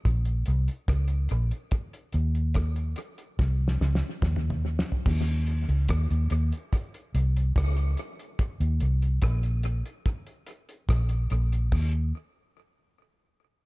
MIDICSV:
0, 0, Header, 1, 3, 480
1, 0, Start_track
1, 0, Tempo, 833681
1, 991, Time_signature, 4, 2, 24, 8
1, 7863, End_track
2, 0, Start_track
2, 0, Title_t, "Fingered electric bass"
2, 0, Program_c, 0, 33
2, 31, Note_on_c, 0, 34, 95
2, 253, Note_off_c, 0, 34, 0
2, 275, Note_on_c, 0, 36, 84
2, 385, Note_off_c, 0, 36, 0
2, 510, Note_on_c, 0, 37, 85
2, 732, Note_off_c, 0, 37, 0
2, 756, Note_on_c, 0, 34, 95
2, 866, Note_off_c, 0, 34, 0
2, 1233, Note_on_c, 0, 39, 101
2, 1689, Note_off_c, 0, 39, 0
2, 1953, Note_on_c, 0, 36, 98
2, 2174, Note_off_c, 0, 36, 0
2, 2193, Note_on_c, 0, 37, 85
2, 2304, Note_off_c, 0, 37, 0
2, 2433, Note_on_c, 0, 39, 89
2, 2770, Note_off_c, 0, 39, 0
2, 2915, Note_on_c, 0, 39, 109
2, 3251, Note_off_c, 0, 39, 0
2, 3274, Note_on_c, 0, 37, 90
2, 3382, Note_off_c, 0, 37, 0
2, 3395, Note_on_c, 0, 39, 101
2, 3505, Note_off_c, 0, 39, 0
2, 3516, Note_on_c, 0, 39, 88
2, 3624, Note_off_c, 0, 39, 0
2, 3633, Note_on_c, 0, 39, 89
2, 3744, Note_off_c, 0, 39, 0
2, 4113, Note_on_c, 0, 36, 90
2, 4333, Note_off_c, 0, 36, 0
2, 4353, Note_on_c, 0, 37, 85
2, 4573, Note_off_c, 0, 37, 0
2, 4953, Note_on_c, 0, 39, 91
2, 5062, Note_off_c, 0, 39, 0
2, 5074, Note_on_c, 0, 36, 95
2, 5294, Note_off_c, 0, 36, 0
2, 5313, Note_on_c, 0, 34, 103
2, 5650, Note_off_c, 0, 34, 0
2, 6270, Note_on_c, 0, 34, 84
2, 6491, Note_off_c, 0, 34, 0
2, 6514, Note_on_c, 0, 34, 88
2, 6733, Note_off_c, 0, 34, 0
2, 6751, Note_on_c, 0, 39, 89
2, 6973, Note_off_c, 0, 39, 0
2, 7863, End_track
3, 0, Start_track
3, 0, Title_t, "Drums"
3, 30, Note_on_c, 9, 36, 106
3, 30, Note_on_c, 9, 42, 76
3, 87, Note_off_c, 9, 36, 0
3, 88, Note_off_c, 9, 42, 0
3, 146, Note_on_c, 9, 42, 49
3, 204, Note_off_c, 9, 42, 0
3, 263, Note_on_c, 9, 42, 67
3, 321, Note_off_c, 9, 42, 0
3, 391, Note_on_c, 9, 42, 50
3, 449, Note_off_c, 9, 42, 0
3, 508, Note_on_c, 9, 36, 109
3, 514, Note_on_c, 9, 37, 104
3, 514, Note_on_c, 9, 42, 86
3, 565, Note_off_c, 9, 36, 0
3, 571, Note_off_c, 9, 42, 0
3, 572, Note_off_c, 9, 37, 0
3, 620, Note_on_c, 9, 42, 56
3, 677, Note_off_c, 9, 42, 0
3, 742, Note_on_c, 9, 42, 60
3, 800, Note_off_c, 9, 42, 0
3, 871, Note_on_c, 9, 42, 47
3, 929, Note_off_c, 9, 42, 0
3, 985, Note_on_c, 9, 42, 85
3, 989, Note_on_c, 9, 36, 109
3, 1043, Note_off_c, 9, 42, 0
3, 1047, Note_off_c, 9, 36, 0
3, 1113, Note_on_c, 9, 42, 52
3, 1171, Note_off_c, 9, 42, 0
3, 1223, Note_on_c, 9, 42, 63
3, 1281, Note_off_c, 9, 42, 0
3, 1353, Note_on_c, 9, 42, 43
3, 1410, Note_off_c, 9, 42, 0
3, 1464, Note_on_c, 9, 42, 99
3, 1470, Note_on_c, 9, 36, 98
3, 1475, Note_on_c, 9, 37, 100
3, 1522, Note_off_c, 9, 42, 0
3, 1528, Note_off_c, 9, 36, 0
3, 1533, Note_off_c, 9, 37, 0
3, 1589, Note_on_c, 9, 42, 49
3, 1646, Note_off_c, 9, 42, 0
3, 1704, Note_on_c, 9, 42, 73
3, 1761, Note_off_c, 9, 42, 0
3, 1831, Note_on_c, 9, 42, 56
3, 1889, Note_off_c, 9, 42, 0
3, 1951, Note_on_c, 9, 36, 98
3, 1957, Note_on_c, 9, 38, 51
3, 2009, Note_off_c, 9, 36, 0
3, 2014, Note_off_c, 9, 38, 0
3, 2117, Note_on_c, 9, 38, 58
3, 2175, Note_off_c, 9, 38, 0
3, 2195, Note_on_c, 9, 38, 61
3, 2253, Note_off_c, 9, 38, 0
3, 2276, Note_on_c, 9, 38, 75
3, 2333, Note_off_c, 9, 38, 0
3, 2431, Note_on_c, 9, 36, 104
3, 2436, Note_on_c, 9, 38, 75
3, 2488, Note_off_c, 9, 36, 0
3, 2494, Note_off_c, 9, 38, 0
3, 2512, Note_on_c, 9, 45, 70
3, 2569, Note_off_c, 9, 45, 0
3, 2592, Note_on_c, 9, 45, 95
3, 2650, Note_off_c, 9, 45, 0
3, 2758, Note_on_c, 9, 38, 99
3, 2815, Note_off_c, 9, 38, 0
3, 2832, Note_on_c, 9, 43, 85
3, 2890, Note_off_c, 9, 43, 0
3, 2913, Note_on_c, 9, 36, 114
3, 2914, Note_on_c, 9, 49, 86
3, 2970, Note_off_c, 9, 36, 0
3, 2971, Note_off_c, 9, 49, 0
3, 3038, Note_on_c, 9, 42, 51
3, 3095, Note_off_c, 9, 42, 0
3, 3149, Note_on_c, 9, 42, 64
3, 3206, Note_off_c, 9, 42, 0
3, 3275, Note_on_c, 9, 42, 47
3, 3332, Note_off_c, 9, 42, 0
3, 3389, Note_on_c, 9, 42, 101
3, 3392, Note_on_c, 9, 36, 95
3, 3399, Note_on_c, 9, 37, 114
3, 3446, Note_off_c, 9, 42, 0
3, 3449, Note_off_c, 9, 36, 0
3, 3457, Note_off_c, 9, 37, 0
3, 3515, Note_on_c, 9, 42, 50
3, 3573, Note_off_c, 9, 42, 0
3, 3628, Note_on_c, 9, 42, 75
3, 3685, Note_off_c, 9, 42, 0
3, 3756, Note_on_c, 9, 42, 54
3, 3814, Note_off_c, 9, 42, 0
3, 3873, Note_on_c, 9, 36, 104
3, 3878, Note_on_c, 9, 42, 79
3, 3931, Note_off_c, 9, 36, 0
3, 3936, Note_off_c, 9, 42, 0
3, 3997, Note_on_c, 9, 42, 51
3, 4055, Note_off_c, 9, 42, 0
3, 4115, Note_on_c, 9, 42, 70
3, 4172, Note_off_c, 9, 42, 0
3, 4241, Note_on_c, 9, 42, 51
3, 4299, Note_off_c, 9, 42, 0
3, 4352, Note_on_c, 9, 36, 111
3, 4362, Note_on_c, 9, 42, 87
3, 4363, Note_on_c, 9, 37, 95
3, 4410, Note_off_c, 9, 36, 0
3, 4420, Note_off_c, 9, 37, 0
3, 4420, Note_off_c, 9, 42, 0
3, 4471, Note_on_c, 9, 42, 55
3, 4528, Note_off_c, 9, 42, 0
3, 4590, Note_on_c, 9, 42, 62
3, 4647, Note_off_c, 9, 42, 0
3, 4718, Note_on_c, 9, 42, 47
3, 4776, Note_off_c, 9, 42, 0
3, 4831, Note_on_c, 9, 36, 107
3, 4831, Note_on_c, 9, 42, 93
3, 4888, Note_off_c, 9, 42, 0
3, 4889, Note_off_c, 9, 36, 0
3, 4955, Note_on_c, 9, 42, 50
3, 5013, Note_off_c, 9, 42, 0
3, 5068, Note_on_c, 9, 42, 64
3, 5126, Note_off_c, 9, 42, 0
3, 5195, Note_on_c, 9, 42, 45
3, 5253, Note_off_c, 9, 42, 0
3, 5307, Note_on_c, 9, 42, 100
3, 5311, Note_on_c, 9, 36, 101
3, 5317, Note_on_c, 9, 37, 113
3, 5364, Note_off_c, 9, 42, 0
3, 5368, Note_off_c, 9, 36, 0
3, 5375, Note_off_c, 9, 37, 0
3, 5431, Note_on_c, 9, 42, 52
3, 5488, Note_off_c, 9, 42, 0
3, 5547, Note_on_c, 9, 42, 74
3, 5604, Note_off_c, 9, 42, 0
3, 5675, Note_on_c, 9, 42, 53
3, 5732, Note_off_c, 9, 42, 0
3, 5790, Note_on_c, 9, 36, 103
3, 5791, Note_on_c, 9, 42, 78
3, 5848, Note_off_c, 9, 36, 0
3, 5849, Note_off_c, 9, 42, 0
3, 5911, Note_on_c, 9, 42, 50
3, 5968, Note_off_c, 9, 42, 0
3, 6025, Note_on_c, 9, 42, 73
3, 6083, Note_off_c, 9, 42, 0
3, 6153, Note_on_c, 9, 42, 50
3, 6211, Note_off_c, 9, 42, 0
3, 6268, Note_on_c, 9, 36, 107
3, 6276, Note_on_c, 9, 37, 103
3, 6276, Note_on_c, 9, 42, 82
3, 6326, Note_off_c, 9, 36, 0
3, 6333, Note_off_c, 9, 42, 0
3, 6334, Note_off_c, 9, 37, 0
3, 6384, Note_on_c, 9, 42, 55
3, 6442, Note_off_c, 9, 42, 0
3, 6506, Note_on_c, 9, 42, 59
3, 6564, Note_off_c, 9, 42, 0
3, 6635, Note_on_c, 9, 42, 52
3, 6693, Note_off_c, 9, 42, 0
3, 6749, Note_on_c, 9, 36, 102
3, 6749, Note_on_c, 9, 49, 76
3, 6806, Note_off_c, 9, 36, 0
3, 6807, Note_off_c, 9, 49, 0
3, 7863, End_track
0, 0, End_of_file